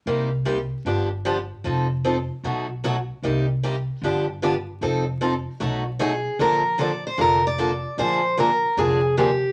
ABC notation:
X:1
M:4/4
L:1/8
Q:"Swing" 1/4=152
K:Bb
V:1 name="Steel-string acoustic guitar"
z8 | z8 | z8 | z6 _A2 |
B2 d c B d3 | c2 B2 _A2 G2 |]
V:2 name="Steel-string acoustic guitar"
[C,G,B,EG] z [C,G,B,EG] z [D,F,=B,DG] z [D,F,B,DG] z | [F,CEA] z [F,CEA] z [=B,,^F,A,^D^F] z [B,,F,A,DF] z | [C,G,B,EG] z [C,G,B,EG] z [D,F,=B,DG] z [D,F,B,DG] z | [F,CEA] z [F,CEA] z [=B,,^F,A,^D^F] z [B,,F,A,DF] z |
[D,F,B,DA] z [D,F,B,DA] z [D,F,B,DA] z [D,F,B,DA] z | [D,F,B,D_A] z [D,F,B,DA] z [D,F,B,DA] z [D,F,B,DA] z |]
V:3 name="Upright bass" clef=bass
C,,4 G,,,4 | F,,,4 =B,,,4 | C,,4 G,,,4 | F,,,4 =B,,,4 |
B,,,4 F,,,4 | B,,,4 F,,,4 |]